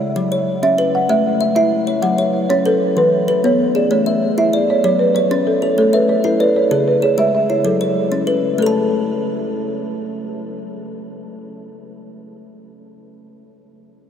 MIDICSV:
0, 0, Header, 1, 3, 480
1, 0, Start_track
1, 0, Tempo, 312012
1, 1695, Time_signature, 12, 3, 24, 8
1, 21690, End_track
2, 0, Start_track
2, 0, Title_t, "Marimba"
2, 0, Program_c, 0, 12
2, 964, Note_on_c, 0, 76, 93
2, 1460, Note_on_c, 0, 78, 93
2, 1464, Note_off_c, 0, 76, 0
2, 1681, Note_off_c, 0, 78, 0
2, 1690, Note_on_c, 0, 76, 92
2, 2375, Note_off_c, 0, 76, 0
2, 2393, Note_on_c, 0, 76, 93
2, 3110, Note_on_c, 0, 78, 90
2, 3144, Note_off_c, 0, 76, 0
2, 3789, Note_off_c, 0, 78, 0
2, 3839, Note_on_c, 0, 73, 96
2, 4093, Note_off_c, 0, 73, 0
2, 4093, Note_on_c, 0, 69, 85
2, 4539, Note_off_c, 0, 69, 0
2, 4584, Note_on_c, 0, 71, 91
2, 5314, Note_on_c, 0, 73, 89
2, 5319, Note_off_c, 0, 71, 0
2, 5789, Note_on_c, 0, 74, 80
2, 5796, Note_off_c, 0, 73, 0
2, 6014, Note_on_c, 0, 73, 86
2, 6027, Note_off_c, 0, 74, 0
2, 6742, Note_on_c, 0, 76, 90
2, 6754, Note_off_c, 0, 73, 0
2, 7183, Note_off_c, 0, 76, 0
2, 7232, Note_on_c, 0, 73, 80
2, 7430, Note_off_c, 0, 73, 0
2, 7448, Note_on_c, 0, 73, 85
2, 7683, Note_on_c, 0, 71, 82
2, 7697, Note_off_c, 0, 73, 0
2, 7921, Note_on_c, 0, 73, 82
2, 7934, Note_off_c, 0, 71, 0
2, 8414, Note_on_c, 0, 69, 81
2, 8420, Note_off_c, 0, 73, 0
2, 8654, Note_on_c, 0, 73, 79
2, 8660, Note_off_c, 0, 69, 0
2, 8876, Note_off_c, 0, 73, 0
2, 8895, Note_on_c, 0, 69, 82
2, 9002, Note_off_c, 0, 69, 0
2, 9139, Note_on_c, 0, 71, 78
2, 9371, Note_on_c, 0, 73, 82
2, 9382, Note_off_c, 0, 71, 0
2, 9611, Note_on_c, 0, 69, 83
2, 9618, Note_off_c, 0, 73, 0
2, 9834, Note_off_c, 0, 69, 0
2, 9849, Note_on_c, 0, 71, 85
2, 10097, Note_off_c, 0, 71, 0
2, 10098, Note_on_c, 0, 73, 83
2, 10330, Note_on_c, 0, 68, 75
2, 10341, Note_off_c, 0, 73, 0
2, 10578, Note_off_c, 0, 68, 0
2, 10580, Note_on_c, 0, 71, 77
2, 10814, Note_on_c, 0, 73, 73
2, 10823, Note_off_c, 0, 71, 0
2, 11060, Note_off_c, 0, 73, 0
2, 11060, Note_on_c, 0, 76, 84
2, 11280, Note_off_c, 0, 76, 0
2, 11303, Note_on_c, 0, 76, 79
2, 11521, Note_off_c, 0, 76, 0
2, 11531, Note_on_c, 0, 73, 71
2, 11755, Note_off_c, 0, 73, 0
2, 11777, Note_on_c, 0, 69, 72
2, 12673, Note_off_c, 0, 69, 0
2, 13236, Note_on_c, 0, 69, 73
2, 17911, Note_off_c, 0, 69, 0
2, 21690, End_track
3, 0, Start_track
3, 0, Title_t, "Kalimba"
3, 0, Program_c, 1, 108
3, 246, Note_on_c, 1, 54, 74
3, 488, Note_on_c, 1, 73, 62
3, 731, Note_off_c, 1, 54, 0
3, 969, Note_on_c, 1, 61, 76
3, 1205, Note_on_c, 1, 71, 64
3, 1211, Note_off_c, 1, 73, 0
3, 1451, Note_off_c, 1, 61, 0
3, 1682, Note_on_c, 1, 57, 82
3, 1929, Note_off_c, 1, 71, 0
3, 2162, Note_on_c, 1, 76, 62
3, 2168, Note_off_c, 1, 57, 0
3, 2401, Note_on_c, 1, 64, 79
3, 2879, Note_on_c, 1, 73, 59
3, 2887, Note_off_c, 1, 64, 0
3, 2887, Note_off_c, 1, 76, 0
3, 3116, Note_on_c, 1, 54, 79
3, 3340, Note_off_c, 1, 73, 0
3, 3359, Note_on_c, 1, 73, 65
3, 3604, Note_off_c, 1, 54, 0
3, 3847, Note_on_c, 1, 61, 78
3, 4084, Note_on_c, 1, 71, 62
3, 4085, Note_off_c, 1, 73, 0
3, 4329, Note_off_c, 1, 61, 0
3, 4564, Note_on_c, 1, 52, 79
3, 4808, Note_off_c, 1, 71, 0
3, 5047, Note_off_c, 1, 52, 0
3, 5048, Note_on_c, 1, 71, 67
3, 5294, Note_on_c, 1, 59, 76
3, 5768, Note_on_c, 1, 68, 62
3, 5769, Note_off_c, 1, 71, 0
3, 5772, Note_off_c, 1, 59, 0
3, 6011, Note_on_c, 1, 57, 71
3, 6249, Note_off_c, 1, 68, 0
3, 6249, Note_on_c, 1, 76, 61
3, 6491, Note_off_c, 1, 57, 0
3, 6734, Note_on_c, 1, 64, 73
3, 6970, Note_off_c, 1, 76, 0
3, 6974, Note_on_c, 1, 74, 65
3, 7212, Note_off_c, 1, 64, 0
3, 7448, Note_on_c, 1, 54, 88
3, 7692, Note_off_c, 1, 74, 0
3, 7929, Note_off_c, 1, 54, 0
3, 7934, Note_on_c, 1, 73, 66
3, 8170, Note_on_c, 1, 61, 81
3, 8647, Note_on_c, 1, 69, 59
3, 8650, Note_off_c, 1, 61, 0
3, 8652, Note_off_c, 1, 73, 0
3, 8889, Note_on_c, 1, 57, 75
3, 9124, Note_on_c, 1, 76, 67
3, 9129, Note_off_c, 1, 69, 0
3, 9370, Note_off_c, 1, 57, 0
3, 9601, Note_on_c, 1, 64, 74
3, 9848, Note_off_c, 1, 76, 0
3, 9849, Note_on_c, 1, 74, 59
3, 10086, Note_off_c, 1, 64, 0
3, 10325, Note_on_c, 1, 49, 83
3, 10570, Note_off_c, 1, 74, 0
3, 10804, Note_on_c, 1, 68, 63
3, 10808, Note_off_c, 1, 49, 0
3, 11042, Note_on_c, 1, 56, 81
3, 11527, Note_off_c, 1, 56, 0
3, 11528, Note_off_c, 1, 68, 0
3, 11534, Note_on_c, 1, 64, 62
3, 11762, Note_on_c, 1, 54, 76
3, 12012, Note_on_c, 1, 73, 64
3, 12013, Note_off_c, 1, 64, 0
3, 12247, Note_off_c, 1, 54, 0
3, 12486, Note_on_c, 1, 61, 69
3, 12723, Note_on_c, 1, 71, 64
3, 12732, Note_off_c, 1, 73, 0
3, 12969, Note_off_c, 1, 61, 0
3, 13204, Note_on_c, 1, 57, 73
3, 13266, Note_on_c, 1, 69, 70
3, 13329, Note_on_c, 1, 81, 77
3, 13447, Note_off_c, 1, 71, 0
3, 17940, Note_off_c, 1, 57, 0
3, 18003, Note_off_c, 1, 69, 0
3, 18065, Note_off_c, 1, 81, 0
3, 21690, End_track
0, 0, End_of_file